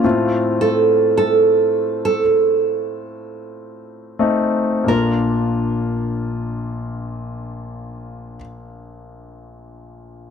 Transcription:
X:1
M:4/4
L:1/16
Q:1/4=44
K:Fphr
V:1 name="Nylon-string guitar"
F2 =A2 A3 A6- A z2 | B16 |]
V:2 name="Grand piano"
[=A,CF]8 z6 [A,CE]2 | [B,=DF]16 |]
V:3 name="Grand piano" clef=bass
=A,,16 | B,,,16 |]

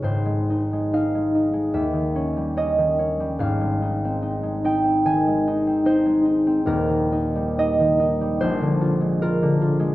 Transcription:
X:1
M:4/4
L:1/16
Q:1/4=73
K:Ab
V:1 name="Harp"
[ce]4 f4 _f4 e4 | f6 g2 a4 c4 | B4 e4 c4 B4 |]
V:2 name="Harp" clef=bass
[A,,,A,,A,] A, E A, E A, E A, E,, E, D G, D E, D G, | [A,,,A,,] A, E C E A, E C E, A, E C E A, E C | [E,,,E,,] E, E G, E E, E G, B,,, =D, F A, F D, F A, |]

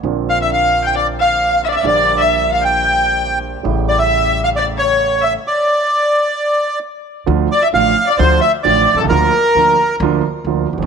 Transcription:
X:1
M:4/4
L:1/16
Q:1/4=133
K:Dm
V:1 name="Bandoneon"
z2 f e f3 g d2 f4 e/2 d/2 e | d3 e3 f g6- g z2 | z2 d e4 f d2 ^c4 e2 | d12 z4 |
z2 d e f3 d c2 e2 d3 A | B8 z8 |]
V:2 name="Violin"
z2 f e f3 g d2 f4 e/2 d/2 e | d3 e3 f g6- g z2 | z2 d e4 f d2 ^c4 e2 | z16 |
z2 d e f3 d c2 e2 d3 A | B8 z8 |]
V:3 name="Grand piano" clef=bass
[B,,,B,,D,B,CF]16 | [B,,,B,,D,G,B,G]16 | [A,,,A,,^C,G,A,E]16 | z16 |
[D,,D,F,A,F]2 z2 [A,,,A,,D,F,A,F]2 z2 [D,,D,F,A,F]2 z2 [A,,,A,,D,F,A,F]2 z/2 =B,,,/2 C,,/2 ^C,,/2 | [D,,D,F,B,F]2 z2 [D,,D,F,B,F]2 z2 [D,,D,F,B,F]2 z2 [D,,D,F,B,F]2 z/2 E,,/2 F,,/2 z/2 |]
V:4 name="Upright bass" clef=bass
B,,,12- B,,,3 z | B,,,12- B,,,3 z | A,,,12- A,,,3 z | z16 |
D,,3/2 z2 z/2 A,,,3/2 z2 z/2 D,,3/2 z2 z/2 A,,,3/2 z =B,,,/2 C,,/2 ^C,,/2 | D,,3/2 z2 z/2 D,,3/2 z2 z/2 D,,3/2 z2 z/2 D,,3/2 z E,,,/2 F,,,/2 ^F,,,/2 |]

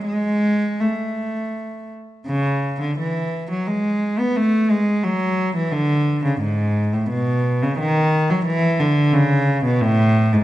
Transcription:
X:1
M:3/4
L:1/16
Q:1/4=88
K:A
V:1 name="Cello" clef=bass
G,4 A,6 z2 | C,3 D, E,3 F, G,3 B, | A,2 G,2 F,3 E, D,3 C, | G,,3 A,, B,,3 C, ^D,3 F, |
E,2 D,2 C,3 B,, A,,3 G,, |]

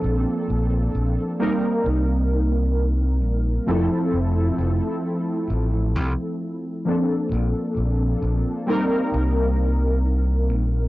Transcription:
X:1
M:4/4
L:1/8
Q:1/4=66
K:F
V:1 name="Synth keys"
[F,B,CDA]3 [G,B,C_EB]4- [G,B,CEB] | [F,A,CEA]6- [F,A,CEA] [F,B,CDA]- | [F,B,CDA]3 [G,B,C_EB]4- [G,B,CEB] |]
V:2 name="Fingered electric bass" clef=bass
B,,, B,,, B,,, z C,,3 B,,, | F,,, F,,, F,,, z A,,, C,, z2 | B,,, B,,, B,,, z C,,3 B,,, |]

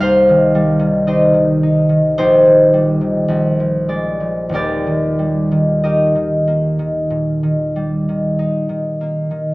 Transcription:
X:1
M:4/4
L:1/16
Q:1/4=48
K:Eb
V:1 name="Harp"
[Gcefg]4 [Gce]4 [EGc]6 d2 | [GBd]4 [GBe]12 |]
V:2 name="Harp" clef=bass
[C,,G,E] E, G, E, E E, E E, B,,, E, G, E, B,,, F, A, F, | [E,,,E,,] E, G, E, E E, B, E, B,, E, G, E, E E, B, E, |]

